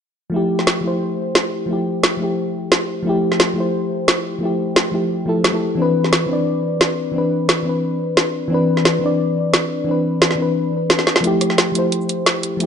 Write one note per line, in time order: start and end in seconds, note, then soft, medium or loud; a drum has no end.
0.30 0.80 F3 medium
0.30 0.82 A3 medium
0.34 0.83 E4 medium
0.34 0.84 G4 loud
0.59 snare soft
0.67 snare loud
0.81 1.65 F3 medium
0.81 1.67 A3 medium
0.85 1.68 E4 medium
0.85 1.69 C5 medium
1.35 snare loud
1.66 2.16 F3 medium
1.66 2.18 A3 medium
1.70 2.19 E4 medium
1.70 2.20 G4 medium
2.04 snare loud
2.17 3.01 F3 medium
2.17 3.03 A3 medium
2.22 3.04 E4 medium
2.22 3.05 G4 medium
2.72 snare loud
3.03 3.52 F3 medium
3.03 3.54 A3 medium
3.07 3.55 E4 medium
3.07 3.57 G4 loud
3.32 snare soft
3.40 snare loud
3.54 4.37 F3 medium
3.54 4.40 A3 medium
3.58 4.41 E4 medium
3.58 4.42 C5 medium
4.08 snare loud
4.39 4.90 F3 medium
4.39 4.91 A3 medium
4.43 4.92 E4 medium
4.43 4.93 G4 medium
4.76 snare loud
4.92 5.25 F3 medium
4.92 5.25 A3 medium
4.92 5.26 E4 medium
4.92 5.27 G4 medium
5.26 5.50 F3 medium
5.26 5.51 A3 medium
5.26 5.51 E4 medium
5.26 5.52 A4 medium
5.44 snare loud
5.51 5.60 F3 medium
5.51 5.61 A3 medium
5.51 5.61 E4 medium
5.51 5.62 A4 medium
5.75 6.25 E3 medium
5.75 6.27 C4 medium
5.80 6.28 D4 medium
5.80 6.29 B4 loud
6.04 snare soft
6.13 snare loud
6.26 7.10 E3 medium
6.26 7.12 C4 medium
6.31 7.13 D4 medium
6.31 7.15 D5 medium
6.81 snare loud
7.12 7.62 E3 medium
7.12 7.63 C4 medium
7.16 7.65 D4 medium
7.16 7.66 B4 medium
7.49 snare loud
7.63 8.47 E3 medium
7.63 8.49 C4 medium
7.67 8.50 D4 medium
7.67 8.51 B4 medium
8.17 snare loud
8.48 8.98 E3 medium
8.48 9.00 C4 medium
8.52 9.01 D4 medium
8.52 9.02 B4 loud
8.77 snare soft
8.85 snare loud
8.99 9.83 E3 medium
8.99 9.85 C4 medium
9.04 9.86 D4 medium
9.04 9.87 D5 medium
9.54 snare loud
9.84 10.34 E3 medium
9.84 10.36 C4 medium
9.89 10.37 D4 medium
9.89 10.38 B4 medium
10.22 snare loud
10.31 snare soft
10.35 11.20 E3 medium
10.35 11.21 C4 medium
10.40 11.23 D4 medium
10.40 11.24 B4 medium
10.90 snare loud
10.99 snare medium
11.07 snare medium
11.16 snare medium
11.21 11.71 F3 medium
11.21 11.73 A3 medium
11.21 closed hi-hat medium
11.25 11.74 E4 medium
11.25 11.75 G4 loud
11.41 cross-stick soft
11.41 closed hi-hat medium
11.41 cabasa medium
11.50 snare soft
11.58 snare loud
11.58 closed hi-hat medium
11.72 12.56 F3 medium
11.72 12.58 A3 medium
11.72 closed hi-hat medium
11.72 cabasa medium
11.76 12.59 E4 medium
11.76 12.60 C5 medium
11.92 closed hi-hat medium
12.01 cabasa soft
12.09 closed hi-hat medium
12.09 cabasa medium
12.26 snare loud
12.26 closed hi-hat medium
12.26 cabasa soft
12.43 closed hi-hat medium
12.43 cabasa medium
12.57 12.66 F3 medium
12.57 12.66 A3 medium
12.57 closed hi-hat medium
12.61 12.66 E4 medium